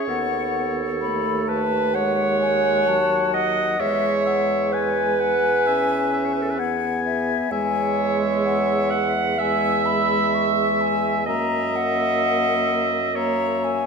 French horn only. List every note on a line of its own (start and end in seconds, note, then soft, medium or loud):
0.08 1.02 B3 medium
1.02 1.96 A3 medium
1.95 2.89 G#3 medium
2.87 3.79 F#3 medium
3.80 5.37 G#3 medium
5.67 6.60 C#4 medium
6.58 7.50 B3 medium
7.51 9.35 G#3 medium
9.39 11.24 G#3 medium
11.27 12.99 A#3 medium
13.16 13.84 A#3 medium